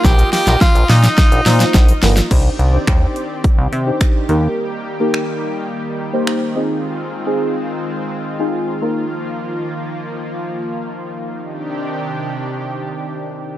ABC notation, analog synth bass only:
X:1
M:4/4
L:1/16
Q:1/4=106
K:Cm
V:1 name="Analog synth bass" clef=bass
B,,,2 z B,,, z B,,, B,,2 z B,,, B,,2 B,,,2 G,,,2 | C,,2 C,,2 E,,2 z3 C,, C,2 z2 E,,2 | z16 | z16 |
z16 | z16 |]